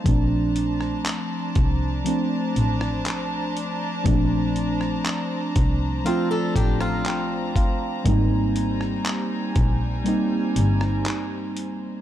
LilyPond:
<<
  \new Staff \with { instrumentName = "String section" } { \time 4/4 \key bes \major \tempo 4 = 60 << { <c'' a'' bes''>1~ | <c'' a'' bes''>1~ | <c'' a'' bes''>1 | } \\ { d'1~ | d'1 | <g aes''>1 | } >> }
  \new Staff \with { instrumentName = "Steel-string acoustic guitar" } { \time 4/4 \key bes \major r1 | r2 <c' f'>16 <d' a'>16 <d' g'>16 <c' f'>4~ <c' f'>16 | r1 | }
  \new Staff \with { instrumentName = "Synth keys" } { \time 4/4 \key bes \major << { r1 | r2. g''8 f''8 | r1 | } \\ { <f a c' d'>4. r8 <f a c' d'>4. r8 | <f a c' d'>4. r8 <f a c' f'>4. r8 | <g bes c' ees'>4. r8 <g bes c' ees'>4. r8 | } >> }
  \new Staff \with { instrumentName = "Double bass" } { \clef bass \time 4/4 \key bes \major bes,,4 r8 c,8 r8 a,,8 r4 | bes,,4 r8 c,8 r8 a,,8 r4 | aes,,4 r8 bes,,8 r8 g,,8 r4 | }
  \new DrumStaff \with { instrumentName = "Drums" } \drummode { \time 4/4 <hh bd>8 hh16 ss16 <hc hh>8 <hh bd>8 hh8 hh16 ss16 <hc hh>8 hh8 | <hh bd>8 hh16 ss16 <hc hh>8 <hh bd>8 hh8 <hh bd>16 ss16 <hc hh>8 <hh bd>8 | <hh bd>8 hh16 ss16 <hc hh>8 <hh bd>8 hh8 hh16 ss16 <hc hh>8 hh8 | }
>>